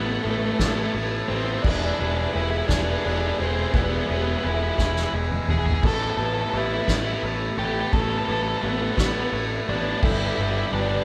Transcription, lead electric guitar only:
0.05 0.12 B3 medium
0.13 0.20 B3 medium
0.23 0.30 A3 medium
0.31 0.37 A3 medium
0.38 0.45 A3 medium
0.46 0.53 A3 medium
0.53 0.60 A3 medium
0.60 0.67 A3 medium
0.68 0.75 A3 medium
0.75 0.83 A3 medium
0.83 0.91 A3 medium
1.28 1.35 C4 medium
1.35 1.44 C4 medium
1.45 1.53 C4 medium
1.54 1.62 C4 medium
1.62 1.70 D4 medium
1.70 1.77 D4 medium
1.77 1.84 D4 medium
1.85 1.91 D4 medium
1.92 1.99 D4 medium
2.00 2.07 D4 medium
2.07 2.15 D4 medium
2.15 2.21 D4 medium
2.22 2.29 D4 medium
2.33 2.41 E4 loud
2.42 2.50 E4 medium
2.50 2.58 E4 medium
2.58 2.66 E4 medium
2.68 2.74 D4 loud
2.75 2.82 D4 medium
2.83 2.90 D4 medium
2.90 2.96 D4 medium
2.97 3.04 D4 medium
3.05 3.11 D4 medium
3.12 3.19 D4 loud
3.20 3.27 D4 medium
3.28 3.35 D4 medium
3.39 3.46 C4 medium
3.47 3.54 C4 medium
3.54 3.60 C4 medium
3.61 3.67 C4 medium
3.67 3.75 C4 medium
3.75 3.83 B3 medium
3.83 3.90 B3 medium
3.90 3.98 B3 medium
3.98 4.06 B3 medium
4.07 4.14 B3 medium
4.15 4.22 B3 medium
4.22 4.30 B3 medium
4.31 4.38 B3 medium
4.38 4.46 B3 medium
4.46 4.54 E4 medium
4.55 4.63 E4 medium
4.63 4.69 E4 medium
4.69 4.78 E4 medium
4.78 4.86 E4 medium
4.86 4.94 E4 medium
4.94 5.02 E4 medium
5.04 5.12 E4 medium
5.50 5.58 G#4 loud
5.59 5.66 G#4 medium
5.66 5.74 G#4 medium
5.74 5.82 G#4 medium
5.87 5.94 A4 loud
5.94 6.02 A4 medium
6.03 6.10 A4 medium
6.10 6.17 A4 medium
6.17 6.25 A4 medium
6.25 6.33 A4 medium
6.34 6.40 A4 medium
6.41 6.49 A4 medium
6.50 6.58 A4 medium
6.57 6.65 E4 medium
6.66 6.73 E4 medium
6.74 6.81 E4 medium
6.82 6.90 E4 medium
6.90 6.96 E4 medium
6.96 7.04 E4 medium
7.06 7.13 E4 medium
7.13 7.21 E4 medium
7.59 7.65 G4 medium
7.65 7.72 G4 medium
7.72 7.79 G4 medium
7.81 7.87 G4 medium
7.88 7.93 G4 medium
7.93 8.01 A4 loud
8.01 8.09 A4 medium
8.10 8.18 A4 medium
8.18 8.25 A4 medium
8.25 8.32 A4 medium
8.32 8.40 A4 medium
8.43 8.48 A4 loud
8.49 8.57 A4 medium
8.58 8.68 B3 medium
8.58 8.66 A4 medium
8.68 8.75 B3 medium
8.77 8.82 B3 medium
8.82 8.90 B3 medium
8.92 8.98 B3 medium
8.98 9.05 B3 medium
9.06 9.12 B3 medium
9.13 9.20 B3 medium
9.21 9.29 B3 medium
9.69 9.76 D4 loud
9.76 9.82 D4 medium
9.82 9.89 D4 medium
9.91 9.97 D4 medium
9.98 10.02 D4 medium
10.03 10.11 E4 loud
10.12 10.18 E4 medium
10.19 10.26 E4 loud
10.27 10.35 E4 medium
10.36 10.43 E4 loud
10.43 10.51 E4 medium
10.51 10.57 E4 loud
10.58 10.66 E4 medium
10.67 10.72 E4 medium
10.73 10.80 D4 loud
10.81 10.89 D4 medium
10.89 10.96 D4 loud
10.97 11.04 D4 medium

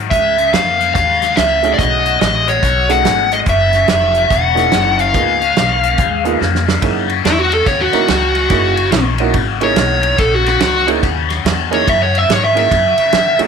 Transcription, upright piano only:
1.63 2.17 A3 medium
1.63 2.18 C#4 medium
1.63 2.18 D#4 medium
1.63 2.18 F#4 medium
1.63 2.18 G#4 medium
2.89 3.44 A3 medium
2.89 3.44 C#4 medium
2.89 3.43 D#4 medium
2.89 3.44 F#4 medium
2.89 3.44 G#4 medium
4.55 5.10 A#3 medium
4.55 5.10 C#4 medium
4.55 5.10 D#4 medium
4.55 5.11 E4 medium
4.55 5.11 G#4 medium
5.13 5.38 A#3 medium
5.13 5.38 B3 medium
5.13 5.38 D#4 medium
5.13 5.38 F4 medium
5.13 5.38 G#4 medium
6.24 6.39 A#3 medium
6.24 6.39 B3 medium
6.24 6.39 D#4 medium
6.24 6.39 F4 medium
6.24 6.39 G#4 medium
6.82 7.06 A#3 medium
6.82 7.06 C#4 medium
6.82 7.06 D#4 medium
6.82 7.06 E4 medium
6.82 7.07 G#4 medium
7.93 8.07 A#3 medium
7.93 8.07 C#4 medium
7.93 8.07 D#4 medium
7.93 8.07 E4 medium
7.93 8.07 A#4 medium
8.50 8.74 A#3 medium
8.50 8.74 C#4 medium
8.50 8.74 D#4 medium
8.50 8.75 E4 medium
8.50 8.75 G#4 medium
9.20 9.34 A#3 medium
9.20 9.34 C#4 medium
9.20 9.34 D#4 medium
9.20 9.34 E4 medium
9.20 9.34 F#4 medium
9.61 10.15 A#3 medium
9.61 10.15 C#4 medium
9.61 10.16 D#4 medium
9.61 10.16 E4 medium
9.61 10.16 G#4 medium
10.87 11.01 A#3 medium
10.87 11.01 C#4 medium
10.87 11.01 D#4 medium
10.87 11.01 E4 medium
10.87 11.01 G#4 medium
11.71 11.85 A#3 medium
11.71 11.85 C#4 medium
11.71 11.85 D#4 medium
11.71 11.85 E4 medium
11.71 11.85 G#4 medium
12.54 12.69 A#3 medium
12.54 12.69 C#4 medium
12.54 12.70 D#4 medium
12.54 12.69 E4 medium
12.54 12.69 G#4 medium
13.39 13.47 A3 medium
13.39 13.47 C#4 medium
13.39 13.47 D#4 medium
13.39 13.47 F#4 medium
13.39 13.47 G#4 medium

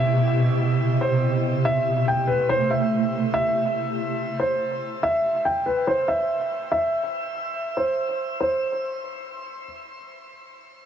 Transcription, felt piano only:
0.00 0.97 E5 loud
1.01 1.61 C5 medium
1.65 2.04 E5 medium
2.08 2.27 G5 medium
2.27 2.48 B4 medium
2.49 2.69 C5 loud
2.71 3.30 E5 medium
3.34 4.35 E5 loud
4.39 4.99 C5 medium
5.03 5.43 E5 loud
5.45 5.65 G5 medium
5.66 5.86 B4 medium
5.87 6.07 C5 medium
6.08 6.68 E5 medium
6.72 7.73 E5 loud
7.77 8.37 C5 medium
8.40 9.63 C5 medium

